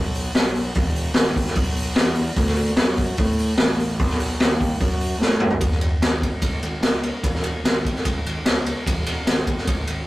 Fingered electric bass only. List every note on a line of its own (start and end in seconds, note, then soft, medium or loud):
0.00 0.28 B1 loud
0.36 0.69 B1 medium
0.76 1.09 E1 medium
1.15 1.49 G#1 medium
1.56 1.90 B1 loud
1.98 2.31 E2 medium
2.36 2.70 D2 loud
2.78 3.11 F#2 medium
3.19 3.52 A2 loud
3.59 3.99 A1 medium
3.99 4.33 B1 medium
4.41 4.74 D#2 medium
4.81 5.14 F#2 loud
5.19 5.53 A2 medium
5.61 5.88 E1 medium
6.00 6.28 G#1 medium
6.42 6.56 C#2 medium
6.61 6.76 G#1 medium
6.81 7.09 C#2 medium
7.23 7.51 E1 medium
7.64 7.92 G#1 medium
8.05 8.19 C#2 medium
8.25 8.39 G#1 medium
8.46 8.73 C#2 medium
8.87 9.14 E1 medium
9.27 9.55 G#1 medium
9.67 9.81 C#2 medium
9.87 10.01 G#1 medium